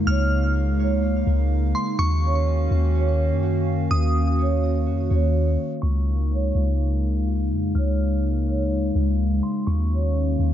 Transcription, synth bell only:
0, 0, Header, 1, 2, 480
1, 0, Start_track
1, 0, Key_signature, -5, "major"
1, 0, Tempo, 480000
1, 68, Time_signature, 4, 2, 24, 8
1, 10537, End_track
2, 0, Start_track
2, 0, Title_t, "Synth bell"
2, 0, Program_c, 0, 98
2, 71, Note_on_c, 0, 89, 99
2, 521, Note_off_c, 0, 89, 0
2, 1749, Note_on_c, 0, 84, 72
2, 1977, Note_off_c, 0, 84, 0
2, 1989, Note_on_c, 0, 85, 111
2, 2440, Note_off_c, 0, 85, 0
2, 3908, Note_on_c, 0, 87, 89
2, 4359, Note_off_c, 0, 87, 0
2, 5818, Note_on_c, 0, 85, 103
2, 6274, Note_off_c, 0, 85, 0
2, 7751, Note_on_c, 0, 89, 95
2, 8201, Note_off_c, 0, 89, 0
2, 9430, Note_on_c, 0, 84, 68
2, 9657, Note_off_c, 0, 84, 0
2, 9669, Note_on_c, 0, 85, 103
2, 10120, Note_off_c, 0, 85, 0
2, 10537, End_track
0, 0, End_of_file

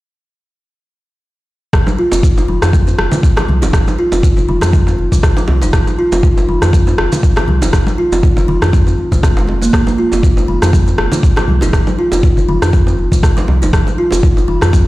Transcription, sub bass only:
0, 0, Header, 1, 2, 480
1, 0, Start_track
1, 0, Tempo, 500000
1, 1666, Time_signature, 4, 2, 24, 8
1, 14279, End_track
2, 0, Start_track
2, 0, Title_t, "Sub bass"
2, 0, Program_c, 0, 38
2, 1662, Note_on_c, 0, 29, 98
2, 1768, Note_off_c, 0, 29, 0
2, 2036, Note_on_c, 0, 29, 84
2, 2349, Note_off_c, 0, 29, 0
2, 2384, Note_on_c, 0, 29, 102
2, 2489, Note_off_c, 0, 29, 0
2, 2517, Note_on_c, 0, 41, 84
2, 2829, Note_off_c, 0, 41, 0
2, 2865, Note_on_c, 0, 29, 84
2, 2970, Note_off_c, 0, 29, 0
2, 3344, Note_on_c, 0, 36, 87
2, 3477, Note_on_c, 0, 27, 93
2, 3491, Note_off_c, 0, 36, 0
2, 3562, Note_off_c, 0, 27, 0
2, 3583, Note_on_c, 0, 29, 98
2, 3689, Note_off_c, 0, 29, 0
2, 3957, Note_on_c, 0, 29, 86
2, 4269, Note_off_c, 0, 29, 0
2, 4305, Note_on_c, 0, 29, 100
2, 4410, Note_off_c, 0, 29, 0
2, 4437, Note_on_c, 0, 41, 83
2, 4749, Note_off_c, 0, 41, 0
2, 4785, Note_on_c, 0, 29, 86
2, 4890, Note_off_c, 0, 29, 0
2, 5264, Note_on_c, 0, 36, 89
2, 5395, Note_on_c, 0, 27, 97
2, 5410, Note_off_c, 0, 36, 0
2, 5482, Note_off_c, 0, 27, 0
2, 5502, Note_on_c, 0, 29, 99
2, 5608, Note_off_c, 0, 29, 0
2, 5875, Note_on_c, 0, 29, 86
2, 6188, Note_off_c, 0, 29, 0
2, 6223, Note_on_c, 0, 29, 104
2, 6329, Note_off_c, 0, 29, 0
2, 6356, Note_on_c, 0, 41, 86
2, 6668, Note_off_c, 0, 41, 0
2, 6703, Note_on_c, 0, 29, 85
2, 6809, Note_off_c, 0, 29, 0
2, 7183, Note_on_c, 0, 36, 88
2, 7314, Note_on_c, 0, 27, 94
2, 7329, Note_off_c, 0, 36, 0
2, 7401, Note_off_c, 0, 27, 0
2, 7422, Note_on_c, 0, 29, 97
2, 7528, Note_off_c, 0, 29, 0
2, 7794, Note_on_c, 0, 29, 86
2, 8107, Note_off_c, 0, 29, 0
2, 8141, Note_on_c, 0, 29, 103
2, 8248, Note_off_c, 0, 29, 0
2, 8274, Note_on_c, 0, 41, 82
2, 8587, Note_off_c, 0, 41, 0
2, 8755, Note_on_c, 0, 29, 81
2, 9308, Note_off_c, 0, 29, 0
2, 9343, Note_on_c, 0, 29, 99
2, 9448, Note_off_c, 0, 29, 0
2, 9717, Note_on_c, 0, 29, 89
2, 10029, Note_off_c, 0, 29, 0
2, 10064, Note_on_c, 0, 29, 103
2, 10169, Note_off_c, 0, 29, 0
2, 10196, Note_on_c, 0, 41, 84
2, 10509, Note_off_c, 0, 41, 0
2, 10544, Note_on_c, 0, 29, 84
2, 10649, Note_off_c, 0, 29, 0
2, 11023, Note_on_c, 0, 36, 85
2, 11156, Note_on_c, 0, 27, 96
2, 11171, Note_off_c, 0, 36, 0
2, 11242, Note_off_c, 0, 27, 0
2, 11262, Note_on_c, 0, 29, 98
2, 11368, Note_off_c, 0, 29, 0
2, 11634, Note_on_c, 0, 29, 89
2, 11947, Note_off_c, 0, 29, 0
2, 11981, Note_on_c, 0, 29, 105
2, 12088, Note_off_c, 0, 29, 0
2, 12114, Note_on_c, 0, 41, 83
2, 12428, Note_off_c, 0, 41, 0
2, 12462, Note_on_c, 0, 29, 86
2, 12568, Note_off_c, 0, 29, 0
2, 12942, Note_on_c, 0, 36, 88
2, 13075, Note_on_c, 0, 27, 94
2, 13090, Note_off_c, 0, 36, 0
2, 13162, Note_off_c, 0, 27, 0
2, 13182, Note_on_c, 0, 29, 100
2, 13288, Note_off_c, 0, 29, 0
2, 13555, Note_on_c, 0, 29, 88
2, 13868, Note_off_c, 0, 29, 0
2, 13903, Note_on_c, 0, 29, 102
2, 14009, Note_off_c, 0, 29, 0
2, 14034, Note_on_c, 0, 41, 84
2, 14279, Note_off_c, 0, 41, 0
2, 14279, End_track
0, 0, End_of_file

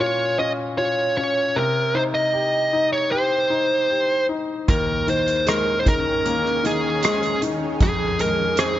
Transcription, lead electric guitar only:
0, 0, Header, 1, 2, 480
1, 0, Start_track
1, 0, Tempo, 780234
1, 960, Time_signature, 4, 2, 24, 8
1, 5411, End_track
2, 0, Start_track
2, 0, Title_t, "Lead electric guitar"
2, 0, Program_c, 0, 29
2, 3, Note_on_c, 0, 73, 86
2, 225, Note_off_c, 0, 73, 0
2, 242, Note_on_c, 0, 75, 83
2, 306, Note_off_c, 0, 75, 0
2, 479, Note_on_c, 0, 73, 87
2, 714, Note_off_c, 0, 73, 0
2, 722, Note_on_c, 0, 73, 78
2, 961, Note_on_c, 0, 70, 77
2, 968, Note_off_c, 0, 73, 0
2, 1200, Note_on_c, 0, 72, 68
2, 1207, Note_off_c, 0, 70, 0
2, 1232, Note_off_c, 0, 72, 0
2, 1319, Note_on_c, 0, 75, 76
2, 1774, Note_off_c, 0, 75, 0
2, 1801, Note_on_c, 0, 73, 67
2, 1914, Note_off_c, 0, 73, 0
2, 1917, Note_on_c, 0, 72, 66
2, 2615, Note_off_c, 0, 72, 0
2, 2888, Note_on_c, 0, 70, 81
2, 3110, Note_off_c, 0, 70, 0
2, 3136, Note_on_c, 0, 72, 83
2, 3355, Note_off_c, 0, 72, 0
2, 3376, Note_on_c, 0, 70, 76
2, 3554, Note_off_c, 0, 70, 0
2, 3563, Note_on_c, 0, 72, 60
2, 3606, Note_off_c, 0, 72, 0
2, 3619, Note_on_c, 0, 70, 68
2, 4097, Note_off_c, 0, 70, 0
2, 4100, Note_on_c, 0, 68, 67
2, 4546, Note_off_c, 0, 68, 0
2, 4815, Note_on_c, 0, 68, 86
2, 5048, Note_off_c, 0, 68, 0
2, 5051, Note_on_c, 0, 70, 70
2, 5285, Note_off_c, 0, 70, 0
2, 5288, Note_on_c, 0, 68, 81
2, 5411, Note_off_c, 0, 68, 0
2, 5411, End_track
0, 0, End_of_file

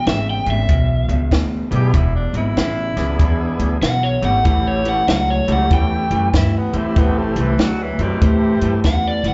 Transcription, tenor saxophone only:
0, 0, Header, 1, 2, 480
1, 0, Start_track
1, 0, Tempo, 627615
1, 1485, Time_signature, 4, 2, 24, 8
1, 7142, End_track
2, 0, Start_track
2, 0, Title_t, "Tenor saxophone"
2, 0, Program_c, 0, 66
2, 1333, Note_on_c, 0, 67, 84
2, 1494, Note_on_c, 0, 64, 78
2, 1506, Note_off_c, 0, 67, 0
2, 1645, Note_off_c, 0, 64, 0
2, 1649, Note_on_c, 0, 62, 68
2, 1802, Note_off_c, 0, 62, 0
2, 1814, Note_on_c, 0, 64, 98
2, 2740, Note_off_c, 0, 64, 0
2, 4867, Note_on_c, 0, 64, 82
2, 5029, Note_on_c, 0, 59, 73
2, 5041, Note_off_c, 0, 64, 0
2, 5180, Note_on_c, 0, 64, 81
2, 5191, Note_off_c, 0, 59, 0
2, 5342, Note_on_c, 0, 59, 78
2, 5354, Note_off_c, 0, 64, 0
2, 5495, Note_on_c, 0, 57, 74
2, 5507, Note_off_c, 0, 59, 0
2, 5665, Note_on_c, 0, 52, 82
2, 5677, Note_off_c, 0, 57, 0
2, 5828, Note_on_c, 0, 54, 75
2, 5840, Note_off_c, 0, 52, 0
2, 5987, Note_on_c, 0, 52, 77
2, 5998, Note_off_c, 0, 54, 0
2, 6136, Note_on_c, 0, 47, 77
2, 6147, Note_off_c, 0, 52, 0
2, 6300, Note_on_c, 0, 48, 86
2, 6312, Note_off_c, 0, 47, 0
2, 6674, Note_off_c, 0, 48, 0
2, 7142, End_track
0, 0, End_of_file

